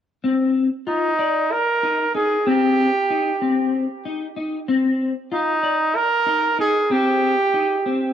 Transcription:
0.24 C4
0.87 D#4 F4
1.19 D5
1.52 A#4
1.83 D#4
2.15 D#4 G#4
2.46 C4 G4
3.10 D#4
3.41 C4
4.05 D#4
4.36 D#4
4.68 C4
5.32 D#4 F4
5.63 D5
5.96 A#4
6.26 D#4
6.59 D#4 G#4
6.91 C4 G4
7.54 D#4
7.86 C4

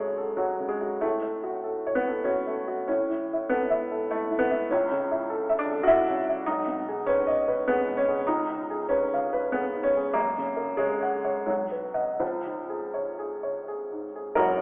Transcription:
Already playing: F#2 C#3 G#3 A3 F#4 A4 C#5
0.18 A4
0.37 F#3 F#4
0.60 C#3
0.68 G#3
0.81 F#4
1.01 A2 A3
1.22 A3
1.44 F#4
1.64 A4
1.87 C#5
1.95 B3
2.08 A4
2.24 C#4 F#4
2.47 A3
2.68 F#4
2.88 A2 C#4
3.10 E3
3.33 E4
3.49 B3 A4
3.70 E5
3.91 A4
4.11 A3 E4
4.30 E3
4.39 B3
4.50 E4
4.70 C#2 C#4
4.91 C#3
5.11 E4
5.30 A4
5.49 E5
5.59 D4
5.71 A4
5.83 E4 F#4
6.09 C#3
6.29 E4
6.46 B1 D#4
6.67 B2
6.88 G#4
7.06 C#4 B4
7.27 D#5
7.48 B4
7.68 B3 G#4
7.87 B2
7.97 C#4
8.08 G#4
8.27 C#2 D#4
8.50 G#2
8.70 G#4
8.89 C#4 B4
9.14 F5
9.33 B4
9.52 B3 G#4
9.74 G#2
9.83 C#4
9.97 G#4
10.13 F#2 A#3
10.38 C#3
10.57 A#4
10.77 G#3 C#5
11.03 F#5
11.25 C#5
11.47 B1 F#3
11.72 B4
11.94 D#5 F#5
12.20 C#2 F3
12.45 G#2
12.69 G#4
12.94 C#5
13.19 G#4
13.43 C#5
13.68 G#4
13.92 G#2
14.16 G#4
14.35 F#1 F#2 C#4 F#4 A#4

